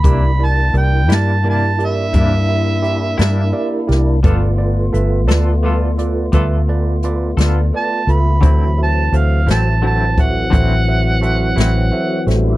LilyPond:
<<
  \new Staff \with { instrumentName = "Harmonica" } { \time 12/8 \key c \major \tempo 4. = 57 b''8 a''8 g''8 a''8 a''8 e''2. r8 | r1 r4 a''8 b''8~ | b''8 a''8 f''8 a''8 a''8 fis''2. r8 | }
  \new Staff \with { instrumentName = "Tine electric piano" } { \time 12/8 \key c \major <e' g' bes' d''>8 <e' g' bes' d''>8 <e' g' bes' d''>8 <e' g' bes' d''>8 <e' g' bes' d''>8 <e' g' bes' d''>8 <e' g' bes' e''>8 <e' g' bes' e''>8 <e' g' bes' e''>8 <e' g' bes' e''>8 <e' g' bes' d''>8 <e' g' bes' d''>8 | <f' a' b' d''>8 <f' a' b' d''>8 <f' a' b' e''>8 <f' a' b' d''>8 <f' a' b' d''>8 <f' a' b' d''>8 <f' a' b' e''>8 <f' a' b' d''>8 <f' a' b' d''>8 <f' a' b' d''>8 <f' a' b' d''>8 <f' a' b' e''>8 | <fis' a' c'' e''>8 <fis' a' c'' e''>8 <fis' a' c'' e''>8 <fis' a' c'' e''>8 <fis' a' c'' fis''>8 <fis' a' c'' e''>8 <fis' a' c'' e''>8 <fis' a' c'' e''>8 <fis' a' c'' e''>8 <fis' a' c'' e''>8 <fis' a' c'' e''>8 <fis' a' c'' e''>8 | }
  \new Staff \with { instrumentName = "Clean electric guitar" } { \time 12/8 \key c \major <c bes d' e'>8 r4 <bes d' e'>8 <c bes d' e'>8 r8 <c bes d' e'>8 r4 <bes d' e'>8 r4 | <g b f' a'>8 r4 <b f' a'>8 <g b f' a'>8 r8 <g b f' a'>8 r4 <b f' a'>8 r4 | <d fis c' e'>8 r4 <fis c' e'>8 <d fis c' e'>8 r8 <d fis c' e'>8 r4 <fis c' e'>8 r4 | }
  \new Staff \with { instrumentName = "Tonewheel organ" } { \time 12/8 \key c \major <bes d' e'>1. | <a b f'>1. | <e fis c'>1. | }
  \new Staff \with { instrumentName = "Fingered electric bass" } { \clef bass \time 12/8 \key c \major c,4 c,8 g,4. g,4. g,8 r8 c,8 | g,,4 g,,8 d,4. d,4. d,8 r8 cis,8 | d,4 d,8 a,,4. a,,4. a,,8 r8 a,,8 | }
  \new DrumStaff \with { instrumentName = "Drums" } \drummode { \time 12/8 <hh bd>4 hh8 <hh sn>4 hh8 <hh bd>4 hh8 <hh sn>4 <hh sn>8 | <hh bd>4 hh8 <hh sn>4 hh8 <hh bd>4 hh8 <hh sn>4 hh8 | <hh bd>4 hh8 <hh sn>4 <hh bd>8 <hh bd>4 hh8 <hh sn>4 <hh sn>8 | }
>>